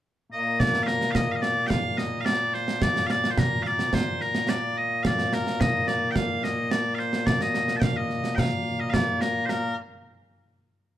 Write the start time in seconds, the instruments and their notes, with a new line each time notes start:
0.32 bagpipes A#2 A#3 D#5
0.60 bagpipes D5, concert bass drum, snare
0.74 snare
0.83 bagpipes A#4 F5
0.87 snare
1.01 snare
1.11 bagpipes F5, concert bass drum, snare
1.15 bagpipes D#5
1.31 bagpipes D#5 F5
1.42 bagpipes D5, snare
1.67 bagpipes F5 G5, concert bass drum, snare
1.97 bagpipes D#5, snare
2.21 bagpipes F5
2.25 bagpipes D5, snare
2.54 bagpipes C5, snare
2.68 snare
2.82 bagpipes D5, concert bass drum, snare
2.96 snare
3.06 bagpipes F5, snare
3.10 bagpipes D5
3.24 snare
3.31 bagpipes C5
3.38 bagpipes A#4, concert bass drum, snare
3.63 bagpipes F5, snare
3.67 bagpipes D5
3.79 snare
3.93 bagpipes C5, concert bass drum, snare
4.21 bagpipes A#4, snare
4.35 snare
4.49 bagpipes D5, snare
4.77 bagpipes D#5
5.03 bagpipes D5 F5, concert bass drum, snare
5.19 snare
5.33 bagpipes A#4, snare
5.47 snare
5.60 bagpipes D#5, concert bass drum, snare
5.88 bagpipes D5, snare
6.11 bagpipes G5
6.16 bagpipes F5, concert bass drum, snare
6.43 bagpipes D#5, snare
6.71 bagpipes D5, snare
6.95 bagpipes F5
6.99 bagpipes C5, snare
7.13 snare
7.26 bagpipes D5, concert bass drum, snare
7.41 bagpipes D#5, snare
7.54 snare
7.68 snare
7.76 bagpipes G5 A5
7.82 bagpipes F5, concert bass drum, snare
7.96 bagpipes D#5
8.10 snare
8.24 snare
8.35 bagpipes G5, concert bass drum, snare
8.39 bagpipes F5
8.80 bagpipes D#5
8.90 bagpipes D5 F5, concert bass drum, snare
9.21 bagpipes A#4, snare
9.45 bagpipes A#4 C5, snare